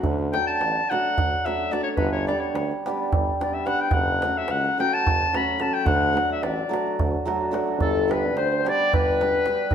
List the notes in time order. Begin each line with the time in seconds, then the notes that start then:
0.02 D2, darbuka dum
0.19 darbuka tek
0.33 F#3 A3 D4 F#4 G5, darbuka tek
0.47 A5
0.60 A1, darbuka tek
0.77 darbuka tek
0.90 F#3 A3 D4 F#4 F#5, darbuka tek
1.17 D2, darbuka dum
1.45 F#3 A3 D4 F#4 E5, darbuka tek
1.71 F#3 A3 D4 F#4 D5, darbuka tek
1.83 C#5
1.96 G1 B4, darbuka dum
2.12 C#5, darbuka tek
2.27 G3 B3 D4 G4 D5, darbuka tek
2.40 C#5
2.53 D2, darbuka tek
2.71 darbuka tek
2.86 G3 B3 D4 G4, darbuka tek
3.12 G1, darbuka dum
3.40 G3 B3 D4 G4 D5, darbuka tek
3.54 E5
3.66 G3 B3 D4 G4 F#5, darbuka tek
3.81 G5
3.91 F#1 F#5, darbuka dum
4.08 darbuka tek
4.22 F#3 A3 C#4 F#4, darbuka tek
4.38 E5
4.48 C#2 F#5, darbuka tek
4.65 darbuka tek
4.78 F#3 A3 C#4 F#4 G5, darbuka tek
4.94 A5
5.07 F#1, darbuka dum
5.33 F#3 A3 C#4 F#4 B5, darbuka tek
5.59 F#3 A3 C#4 F#4 A5, darbuka tek
5.74 G5
5.85 D2 F#5, darbuka dum
6.02 darbuka tek
6.13 F#3 A3 D4 F#4
6.17 darbuka tek
6.30 E5, darbuka tek
6.42 A1 D5, darbuka tek
6.58 darbuka tek
6.69 F#3 A3 D4 F#4
6.74 darbuka tek
6.87 darbuka tek
6.99 D2, darbuka dum
7.14 darbuka tek
7.25 F#3 A3 D4 F#4, darbuka tek
7.41 darbuka tek
7.51 F#3 A3 D4 F#4, darbuka tek
7.67 darbuka tek
7.77 G1 A4, darbuka dum
7.81 A4
7.95 darbuka tek
8.08 G3 B3 D4 G4 B4, darbuka tek
8.12 B4
8.34 D2 C5, darbuka tek
8.52 darbuka tek
8.65 G3 B3 D4 G4 D5, darbuka tek
8.69 D5
8.80 darbuka tek
8.92 G1 B4, darbuka dum
8.96 B4
9.21 G3 B3 D4 G4, darbuka tek
9.45 G3 B3 D4 G4, darbuka tek
9.58 darbuka tek
9.71 darbuka dum